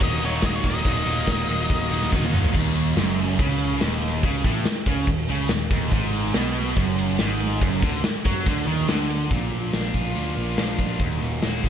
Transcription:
Already playing: D#2 A#2 D#3 F#3 A#3 D#4 F#4
0.00 D#1 D#3 F#3 A#3 D#4 D#5, kick, ride
0.12 A#3 D#4 F#4
0.21 D#1 D#2 A#2 D#3 F#3 A#3 D#4 C#5, ride
0.32 D#4 F#4
0.42 D#2 A#2 D#3 F#3 A#3 D#4 F#4, kick, snare, ride
0.46 D#5
0.56 C#5
0.63 D#1 D#3 F#3 A#3 D#4 D#5, kick, ride
0.67 D#3 F#4
0.74 A#3 D#4 F#4
0.84 D#1 D#2 A#2 D#3 F#3 A#3 D#4 F#4, kick, ride
0.89 D#4
1.06 D#1 D#3 F#3 A#3 D#4 F#4, ride
1.10 D#3
1.27 D#1 D#3 F#3 A#3 D#4 F#4, kick, snare, ride
1.48 D#1 D#2 A#2 D#3 F#3 A#3 D#4, ride
1.52 D#4 F#4
1.61 A#3 D#4 F#4
1.70 D#1 D#3 F#3 A#3 D#4, kick, ride
1.81 A#3 D#4 F#4
1.91 D#1 D#2 A#2 F#3 A#3 D#4, ride
1.95 D#3
2.02 A#3 D#4 F#4, snare
2.12 D#1 D#2 A#2 D#3 F#3 A#3 D#4 F#4, kick, snare
2.24 high tom
2.33 D#1 D#3 F#3 A#3 D#4 F#4, mid tom
2.44 A#3 D#4 F#4, floor tom
2.54 D#1 D#2, kick, crash
2.76 ride
2.97 F#1 F#2, snare, ride
3.18 ride
3.39 C#2 C#3, kick, ride
3.59 ride
3.81 D#1 D#2, snare, ride
4.02 ride
4.23 C#2 C#3, kick, ride
4.44 A1 A2, kick, snare, ride
4.65 muted picked electric bass stroke, muted distorted electric guitar stroke, muted overdriven electric guitar stroke, snare, ride
4.76 snare
4.86 C#2 C#3, kick, ride
5.07 D#1 D#2, kick, ride
5.28 C#2 C#3, ride
5.49 D#1 D#2, snare, ride
5.71 D#1 D#2, kick, ride
5.91 G#1 G#2, kick, ride
6.13 snare, ride
6.34 B1 B2, snare, ride
6.56 ride
6.77 F#1 F#2, kick, ride
6.98 ride
7.19 G#1 G#2, snare, ride
7.40 ride
7.60 F#1 F#2, kick, ride
7.82 D2 D3, kick, snare, ride
8.03 muted overdriven electric guitar stroke, muted distorted electric guitar stroke, muted picked electric bass stroke, snare, ride
8.16 snare
8.25 F#2 F#3, kick, ride
8.46 D2 D3, kick, ride
8.67 D#2 D#3, ride
8.88 D2 D3, snare, ride
9.10 ride
9.30 A#1 A#2 F3 A#3 D4 F4, kick, closed hi-hat
9.51 A#1 F3 A#3 D4 F4, closed hi-hat
9.61 A#3 D4 F4
9.71 A#1 A#2 F3 A#3 D4 F4, snare, closed hi-hat
9.82 A#3 D4 F4
9.94 A#1 F3 A#3 D4 F4, kick, closed hi-hat
9.98 F4
10.06 A#3 D4 F4
10.16 D2 A#3 D4, closed hi-hat
10.26 A#3 D4 F4
10.36 A#1 F3 A#3 D4 F4, closed hi-hat
10.57 A#1 A#2 F3 A#3 D4 F4, snare, closed hi-hat
10.68 A#3 D4 F4
10.79 A#1 F3 A#3 D4 F4, kick, closed hi-hat
10.99 D#1 D#2 D#3 A#3 D#4 F#4, kick, closed hi-hat
11.10 snare
11.21 D#1 A#2 D#3 A#3 D#4 F#4, closed hi-hat
11.30 A#3 D#4 F#4
11.41 D#1 D#3 F#3 A#3 D#4 F#4, snare, closed hi-hat
11.63 D#1 D#3 A#3 D#4 F#4, kick, closed hi-hat

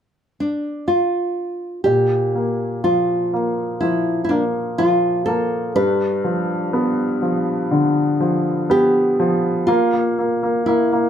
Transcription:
0.40 D4
0.88 F4
1.84 A#2 G4
2.35 A#3
2.84 F3 F4
3.34 A#3
3.80 F3 E4
4.24 E4
4.29 A#3 D4
4.78 F3 F4
5.26 A#3 A4
5.76 G2 B4
6.24 F3
6.73 B3
7.22 F3
7.71 D3
8.20 F3
8.70 B3 G4
9.20 F3
9.67 A#3 F4
9.94 A#3
10.19 A#3
10.43 A#3
10.66 A#3 E4
10.93 A#3

